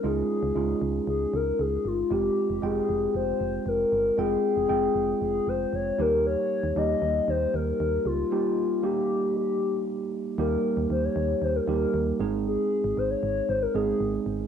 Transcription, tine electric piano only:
\new Staff \with { instrumentName = "Tine electric piano" } { \time 4/4 \key ees \mixolydian \tempo 4 = 116 <aes des' ees' f'>8 r8 <aes des' ees' f'>4. r4. | <aes c' f' g'>8 r8 <aes c' f' g''>4. r4. | <aes c' f' g''>8 r8 <aes c' f' g''>4. r4 <g bes ees' g'>8~ | <g bes ees' g'>8 r8 <g bes ees' g'>4. r4. |
<g bes ees' g'>8 r8 <g bes ees' g'>4. r4. | <g bes ees' g'>4. r4 <g bes ees' g'>4 <aes c' ees' aes'>8~ | <aes c' ees' aes'>4 r4. <aes c' ees' aes'>4 r8 | }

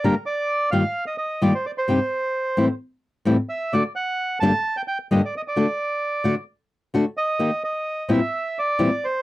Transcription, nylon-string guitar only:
\new Staff \with { instrumentName = "Nylon-string guitar" } { \time 4/4 \key g \minor \tempo 4 = 130 <g, d g bes d' g'>8 r4 <g, ees g bes f' g'>8 r4 <g, ees g bes f' g'>8 r8 | <g, c g c' ees' g'>8 r4 <a, e g c' e'>8 r4 <a, e g c' e'>8 r8 | <d a d' fis'>8 r4 <g, d g bes d' g'>8 r4 <g, d g bes d' g'>8 r8 | <d a d' fis'>8 r4 <d a d' fis'>8 r4 <d a d' fis'>8 r8 |
<ees bes ees' g'>8 r4 <e, bes, e g c' e'>8 r4 <e, bes, e g c' e'>8 r8 | }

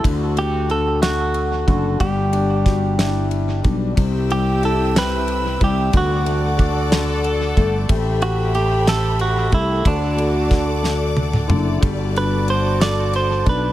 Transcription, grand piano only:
\new Staff \with { instrumentName = "Grand piano" } { \time 6/8 \key g \major \tempo 4. = 61 d8 a8 d8 a4 d8 | g8 d'8 g8 d'4 g8 | c8 g8 e'8 c4 g8 | d8 a8 d'8 d4 a8 |
a8 a8 a8 a4 a8 | d8 a8 d8 a4 d8 | g8 d'4 a'4 d'8 | }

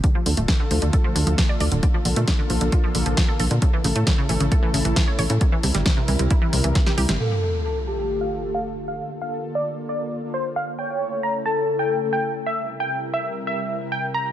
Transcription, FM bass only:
\new Staff \with { instrumentName = "FM bass" } { \clef bass \time 4/4 \key d \minor \tempo 4 = 134 r8 d,16 d,,16 r8 d,16 d,16 r8 d,16 d,16 r8 d,16 d,,16 | r8 bes,,16 bes,16 r8 bes,,16 bes,,16 r8 bes,,16 bes,,16 r8 bes,,16 bes,16 | r8 a,,16 a,16 r8 a,,16 a,,16 r8 a,,16 a,,16 r8 a,,16 a,16 | r8 c,16 g,,16 r8 c,16 c,16 r8 c,16 c,16 r8 c,16 g,,16 |
r1 | r1 | r1 | r1 | }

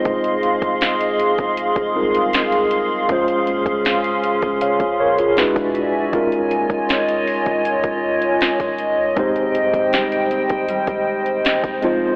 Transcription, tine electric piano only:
\new Staff \with { instrumentName = "Tine electric piano" } { \time 4/4 \key f \minor \tempo 4 = 79 << { r1 | r2 <des'' f''>8 <bes' des''>16 <f' aes'>8 r8. | r1 | r1 | } \\ { <aes c' ees' f' c''>2~ <aes c' ees' f' c''>8 <g aes c' ees' f' bes'>4. | <aes des' f' c''>2. <gis d' e' fis' b'>4 | <aes des' ees' f' bes'>1 | <aes c' ees' g' c''>2.~ <aes c' ees' g' c''>8 <aes c' ees' f' c''>8 | } >> }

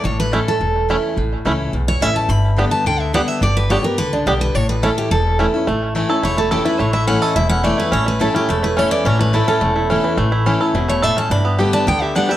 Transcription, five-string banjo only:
\new Staff \with { instrumentName = "Five-string banjo" } { \time 4/4 \key a \mixolydian \tempo 4 = 213 r4 <a cis' e'>8 r4. <a cis' e'>8 r8 | r4 <a cis' e'>8 r4. <a cis' e'>8 r8 | r4 <b d' g'>8 r4. <b d' g'>8 r8 | r4 <b d' g'>8 r4. <b d' g'>8 r8 |
r4 <a cis' e'>8 r4. <a cis' e'>8 r8 | a4 a8 a'8 e'8 a8 a'8 e'8 | a8 e'8 cis'8 a'8 e'8 cis'8 a8 e'8 | cis'8 a8 e'8 cis'8 a8 e'8 cis'8 e8 |
cis'8 a8 e'8 cis'8 a8 e'8 cis'8 e8 | a8 e'8 cis'8 a'8 e'8 a8 a'8 cis'8 | d'8 b8 g'8 d'8 b8 g'8 d'8 g8 | }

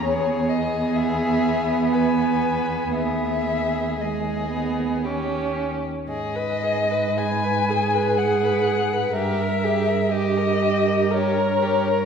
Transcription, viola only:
\new Staff \with { instrumentName = "Viola" } { \time 3/4 \key gis \minor \tempo 4 = 60 b2.~ | b4 gis8 b8 cis'4 | r4 b'8 gis'4. | bes'8 gis'8 g'4 bes'4 | }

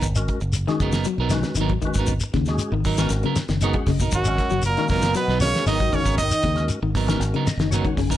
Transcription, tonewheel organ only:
\new Staff \with { instrumentName = "Tonewheel organ" } { \time 4/4 \key gis \minor \tempo 4 = 117 r16 <gis cis' fis' ais'>8 r8 <gis cis' fis' gis'>8 r8. <gis cis' fis' b'>8 r8 <gis cis' fis' b'>8 | r8. <gis cis' fis' gis'>8 r8 <gis cis' fis' ais'>8 r8. <gis cis' fis' gis' fis''>8 dis''8 | r16 <gis cis' fis' ais'>8 r8 <gis cis' fis' ais'>8 r8. <gis cis' fis' ais'>8 r8 <gis cis' fis' ais'>8 | r8. <gis cis' fis' ais'>8 r8 <gis cis' fis' ais'>8 r16 dis''8 <gis cis' fis' cis'' fis''>8 gis''8 | }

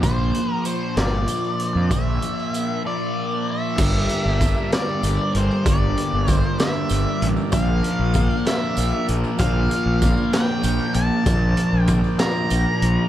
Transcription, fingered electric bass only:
\new Staff \with { instrumentName = "Fingered electric bass" } { \clef bass \time 6/8 \key bes \lydian \tempo 4. = 64 bes,,8 r4 g,,8 r8. f,16 | bes,,8 r2 r8 | g,,8 r16 g,,8 r8. g,,16 r16 g,,16 r16 | g,,8 r16 g,,8 r8. g,,16 r16 a,,16 r16 |
bes,,8 r16 bes,,8 r8. bes,,16 r16 bes,,16 r16 | bes,,8 r16 bes,,8 r8. bes,,16 r16 bes,,16 r16 | bes,,8 r16 bes,,8 r8. bes,,16 r16 bes,,16 r16 | }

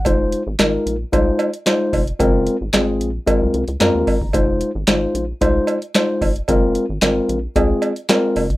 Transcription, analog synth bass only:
\new Staff \with { instrumentName = "Analog synth bass" } { \clef bass \time 4/4 \key f \phrygian \tempo 4 = 112 f,,8. aes,,16 aes,,8 bes,,8 c,8 r4 f,,8 | ges,,8. aes,,16 aes,,8 bes,,8 r16 c,16 c,16 des,16 ges,16 ees,16 r16 ges,,16 | f,,8. aes,,16 aes,,8 bes,,8 c,8 r4 f,,8 | ges,,8. aes,,16 aes,,8 bes,,8 c,8 r4 ges,,8 | }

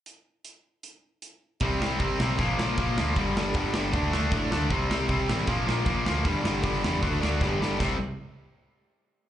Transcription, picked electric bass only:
\new Staff \with { instrumentName = "Picked electric bass" } { \clef bass \time 4/4 \key g \mixolydian \tempo 4 = 155 r1 | c,4 c,8 b,,8 bes,,8 bes,,8 bes,,8 d,8 | g,,8 g,,8 g,,8 g,,8 d,8 d,8 a,8 d,8 | c,4 c,8 a,,8 bes,,8 bes,,8 bes,,8 d,8 |
g,,8 g,,8 g,,8 e,8 d,8 d,8 g,,8 g,,8 | c,8 r2. r8 | }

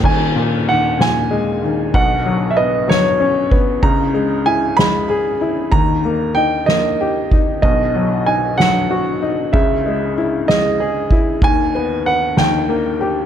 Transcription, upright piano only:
\new Staff \with { instrumentName = "Upright piano" } { \clef bass \time 6/8 \key dis \phrygian \tempo 4. = 63 <dis,, dis,>8 ais,8 dis8 ais,8 gis8 dis8 | <b,, b,>8 fis8 b8 fis8 cis'8 b8 | <cis, cis>8 gis8 e'8 gis8 gis'8 e'8 | <dis, dis>8 ais8 dis'8 ais8 g'8 dis'8 |
<b,, b,>8 fis8 dis'8 fis8 fis'8 dis'8 | <cis, cis>8 gis8 e'8 gis8 gis'8 e'8 | <dis, dis>8 b8 b'8 <dis, dis>8 ais8 g'8 | }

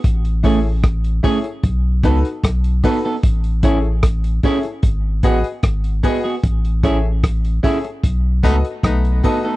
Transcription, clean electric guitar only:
\new Staff \with { instrumentName = "Clean electric guitar" } { \time 4/4 \key a \lydian \tempo 4 = 75 r8 <a cis' gis'>16 r8. <a cis' gis'>16 r8. <b dis' a'>16 r8. <b dis' a'>16 <b dis' a'>16 | r8 <cis' e' gis'>16 r8. <cis' e' gis'>16 r8. <b fis' gis'>16 r8. <b fis' gis'>16 <b fis' gis'>16 | r8 <cis' e' gis'>16 r8. <cis' e' gis'>16 r8. <b dis' a'>16 r8. <b dis' a'>16 <b dis' a'>16 | }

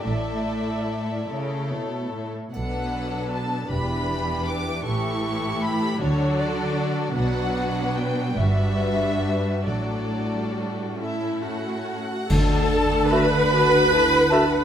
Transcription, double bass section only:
\new Staff \with { instrumentName = "Double bass section" } { \clef bass \time 6/8 \key d \major \tempo 4. = 50 a,,4 r2 | b,,4 r8 e,,4 r8 | a,,4 r8 d,4 r8 | b,,4 r8 g,,4 r8 |
a,,4 r2 | d,2. | }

